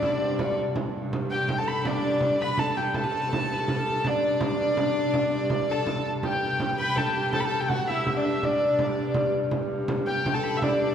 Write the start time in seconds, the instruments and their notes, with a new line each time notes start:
Already playing: hurdy-gurdy G2 D5
0.03 fiddle E4, frame drum
0.12 fiddle D4
0.22 fiddle C4
0.30 fiddle D4
0.39 fiddle F#4, frame drum
0.76 frame drum
1.13 frame drum
1.31 fiddle G4, hurdy-gurdy G5
1.49 frame drum
1.58 fiddle A4, hurdy-gurdy A5
1.68 hurdy-gurdy B5
1.85 fiddle D4, hurdy-gurdy D5, frame drum
2.04 frame drum
2.21 frame drum
2.40 fiddle B4, hurdy-gurdy B5
2.58 fiddle A4, hurdy-gurdy A5, frame drum
2.77 fiddle G4, hurdy-gurdy G5
2.94 hurdy-gurdy G2 A5, fiddle A4, frame drum
3.04 fiddle B4
3.11 fiddle A4
3.21 fiddle B4
3.29 fiddle A4
3.33 frame drum
3.38 fiddle B4
3.44 fiddle A4
3.53 fiddle B4
3.60 fiddle A4
3.68 fiddle B4, frame drum
3.76 fiddle A4
4.04 fiddle D4, hurdy-gurdy D5, frame drum
4.41 frame drum
4.77 frame drum
5.14 frame drum
5.50 frame drum
5.68 fiddle A4, hurdy-gurdy A5
5.87 frame drum
6.23 fiddle G4, hurdy-gurdy G5, frame drum
6.60 frame drum
6.77 fiddle B4, hurdy-gurdy B5, frame drum
6.96 fiddle A4, hurdy-gurdy A5, frame drum
7.14 fiddle G4, hurdy-gurdy G5
7.32 hurdy-gurdy G2 A5, fiddle A4, frame drum
7.40 hurdy-gurdy B5
7.45 fiddle A4, hurdy-gurdy A5
7.61 fiddle G4, hurdy-gurdy G5
7.68 fiddle F#4, hurdy-gurdy F#5, frame drum
7.88 fiddle E4, hurdy-gurdy E5
8.07 frame drum
8.15 fiddle D4, hurdy-gurdy D5
8.25 hurdy-gurdy E5
8.43 fiddle D4, hurdy-gurdy D5, frame drum
8.79 frame drum
9.14 frame drum
9.51 frame drum
9.88 frame drum
10.07 fiddle G4, hurdy-gurdy G5
10.26 frame drum
10.34 fiddle A4, hurdy-gurdy A5
10.43 hurdy-gurdy B5
10.57 hurdy-gurdy E5
10.62 fiddle D4, hurdy-gurdy D5, frame drum
10.69 fiddle E4
10.76 fiddle D4